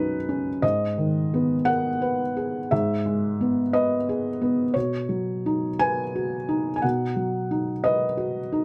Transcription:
0.00 0.59 B1 soft
0.00 0.65 F#2 soft
0.00 0.29 C#4 soft
0.00 0.49 D#4 soft
0.00 0.14 F#4 soft
0.00 0.62 B4 medium
0.00 0.65 C#5 medium
0.29 0.63 C#4 soft
0.62 2.67 G#2 soft
0.62 1.67 D#5 medium
0.98 1.53 D#3 soft
1.34 1.88 B3 soft
1.65 2.22 A#4 soft
1.65 2.70 F#5 medium
2.02 2.58 B4 soft
2.37 2.71 G#4 soft
2.71 4.71 G#2 soft
2.71 3.73 E5 medium
3.06 3.60 G#3 soft
3.41 3.94 B3 soft
3.73 4.28 B4 soft
3.73 4.75 D#5 medium
4.09 4.62 G#4 soft
4.41 4.75 B3 soft
4.74 6.79 B2 soft
4.74 5.81 C#5 medium
5.09 5.67 F#3 soft
5.46 6.02 D#4 soft
5.79 6.35 B4 soft
5.79 6.75 G#5 medium
6.15 6.69 F#4 soft
6.49 7.03 D#4 soft
6.76 6.83 G#5 medium
6.82 8.64 B2 soft
6.82 7.83 F#5 medium
7.16 7.70 F#3 soft
7.51 8.04 D#4 soft
7.84 8.39 B4 soft
7.84 8.64 D#5 medium
8.17 8.64 F#4 soft
8.52 8.64 D#4 soft

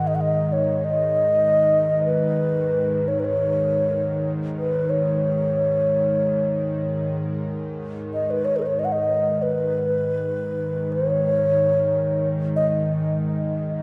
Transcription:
0.00 9.78 G#2 medium
0.00 9.77 D#3 medium
0.07 0.17 D#5 medium
0.15 0.23 F#5 medium
0.21 0.54 D#5 medium
0.53 0.86 C#5 medium
0.84 2.04 D#5 medium
2.05 3.10 B4 medium
3.08 3.21 C#5 medium
3.19 3.26 B4 medium
3.25 4.32 C#5 medium
4.58 4.91 B4 medium
4.90 7.16 C#5 medium
8.14 8.32 D#5 medium
8.31 8.46 B4 medium
8.45 8.58 C#5 medium
8.56 8.60 G#4 medium
8.56 8.59 B4 medium
8.56 8.68 B4 medium
8.66 8.81 C#5 medium
8.79 8.86 D#5 medium
8.85 8.94 F#5 medium
8.92 9.44 D#5 medium
9.42 10.94 B4 medium
9.79 13.82 G#2 medium
9.79 13.82 D#3 medium
10.92 12.28 C#5 medium
12.56 13.82 D#5 medium

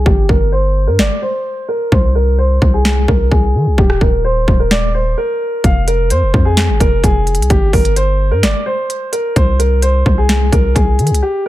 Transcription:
0.06 0.28 G1 loud
0.06 0.26 G4 medium
0.06 kick loud
0.29 0.89 G1 loud
0.29 0.49 A#4 medium
0.29 kick medium
0.52 0.85 C5 medium
0.87 1.00 G2 loud
0.87 0.97 A#4 medium
0.99 1.10 G1 loud
0.99 1.19 D5 medium
0.99 snare loud
1.22 1.66 C5 medium
1.69 1.88 A#4 medium
1.92 2.59 C2 loud
1.92 2.12 C5 medium
1.92 kick loud
2.15 2.35 A#4 medium
2.38 2.71 C5 medium
2.62 3.06 C2 loud
2.62 kick medium
2.74 3.06 G#4 medium
2.85 snare loud
3.08 3.31 C2 loud
3.08 3.28 A#4 medium
3.08 kick medium
3.31 3.56 C2 loud
3.31 3.75 G#4 medium
3.31 kick medium
3.55 3.68 D#3 medium
3.66 3.78 C2 medium
3.78 4.00 D#1 loud
3.78 3.98 G4 medium
3.78 kick loud
3.90 cross-stick medium
4.01 4.46 D#1 loud
4.01 4.21 A#4 medium
4.01 kick medium
4.24 4.57 C5 medium
4.48 5.15 D#1 loud
4.48 kick medium
4.60 4.69 A#4 medium
4.71 4.91 D5 loud
4.71 snare loud
4.94 5.14 C5 medium
5.18 5.61 A#4 medium
5.64 6.12 F1 loud
5.64 5.84 F5 medium
5.64 kick loud
5.64 closed hi-hat medium
5.88 6.07 A#4 medium
5.88 closed hi-hat medium
6.10 6.24 F2 loud
6.10 6.43 C5 medium
6.10 closed hi-hat medium
6.22 6.33 F1 loud
6.34 6.70 F2 loud
6.34 kick medium
6.45 6.78 G#4 medium
6.57 snare loud
6.57 closed hi-hat medium
6.69 6.80 G#1 loud
6.80 7.03 F1 loud
6.80 7.00 A#4 medium
6.80 kick medium
6.80 closed hi-hat medium
7.04 7.40 F1 loud
7.04 7.47 G#4 medium
7.04 kick medium
7.04 closed hi-hat medium
7.27 closed hi-hat soft
7.35 7.50 C2 loud
7.35 closed hi-hat medium
7.42 closed hi-hat medium
7.50 7.72 G1 loud
7.50 7.70 G4 medium
7.50 kick loud
7.50 closed hi-hat medium
7.73 8.33 G1 loud
7.73 7.93 A#4 medium
7.73 kick medium
7.73 closed hi-hat soft
7.73 open hi-hat medium
7.85 closed hi-hat medium
7.96 8.29 C5 medium
7.96 closed hi-hat medium
8.31 8.45 G2 loud
8.31 8.41 A#4 medium
8.43 8.54 G1 loud
8.43 8.63 D5 medium
8.43 snare loud
8.43 closed hi-hat medium
8.66 9.10 C5 medium
8.90 closed hi-hat medium
9.12 9.32 A#4 medium
9.12 closed hi-hat medium
9.36 10.03 C2 loud
9.36 9.56 C5 medium
9.36 kick loud
9.36 closed hi-hat medium
9.59 9.79 A#4 medium
9.59 closed hi-hat medium
9.82 10.15 C5 medium
9.82 closed hi-hat medium
10.06 10.51 C2 loud
10.06 kick medium
10.18 10.51 G#4 medium
10.29 snare loud
10.29 closed hi-hat medium
10.53 10.75 C2 loud
10.53 10.72 A#4 medium
10.53 kick medium
10.53 closed hi-hat medium
10.75 11.00 C2 loud
10.75 11.19 G#4 medium
10.75 kick medium
10.75 closed hi-hat medium
10.99 11.12 D#3 loud
10.99 closed hi-hat soft
11.07 11.22 C2 loud
11.07 closed hi-hat medium
11.15 closed hi-hat medium
11.23 11.42 G4 medium

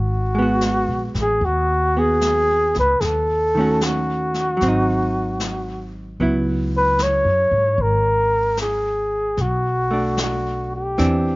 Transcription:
0.00 0.84 G#1 medium
0.00 1.14 F#4 medium
0.35 3.00 G#3 soft
0.35 1.95 B3 soft
0.42 1.97 F#4 soft
0.61 snare soft
0.61 hi-hat pedal soft
0.88 1.13 A#1 soft
1.14 1.39 A1 medium
1.14 snare soft
1.22 1.46 G#4 medium
1.41 2.72 D#2 medium
1.41 2.00 F#4 medium
1.41 brush sweep soft
1.97 3.01 B3 soft
1.97 3.02 F#4 soft
1.97 2.77 G#4 medium
2.21 snare soft
2.21 hi-hat pedal soft
2.74 2.99 C#2 medium
2.74 snare soft
2.80 3.02 B4 medium
3.01 4.56 D#2 medium
3.01 3.07 G#4 medium
3.01 brush sweep soft
3.01 snare soft
3.05 3.85 A4 medium
3.55 4.59 D#3 soft
3.55 4.57 A3 soft
3.59 4.61 C#4 soft
3.59 4.62 F#4 soft
3.81 5.96 F#4 medium
3.81 snare soft
3.81 hi-hat pedal soft
4.34 snare soft
4.57 6.17 F#3 soft
4.57 brush sweep soft
4.57 snare soft
4.61 6.15 G#1 medium
4.61 6.20 C4 soft
4.68 6.22 D#4 soft
5.40 snare soft
5.40 hi-hat pedal soft
6.19 7.21 C#2 medium
6.19 9.38 F#3 soft
6.19 9.38 B3 soft
6.19 9.39 E4 soft
6.19 brush sweep soft
6.77 7.04 B4 medium
6.99 snare soft
6.99 hi-hat pedal soft
7.03 7.83 C#5 medium
7.25 7.49 F#2 soft
7.51 7.76 G#2 medium
7.78 9.33 G#1 medium
7.78 8.59 A#4 medium
7.78 brush sweep soft
8.57 9.42 G#4 medium
8.57 snare soft
8.57 hi-hat pedal soft
9.37 10.93 B1 medium
9.37 10.19 F#4 medium
9.37 brush sweep soft
9.37 snare soft
9.91 10.96 A3 soft
9.91 10.97 D4 soft
10.17 snare soft
10.17 hi-hat pedal soft
10.22 10.71 F#4 medium
10.76 11.36 G4 medium
10.98 11.36 E2 medium
10.98 11.36 E3 soft
10.98 11.36 C4 soft
10.98 11.36 D4 medium
10.98 brush sweep soft
10.98 snare soft

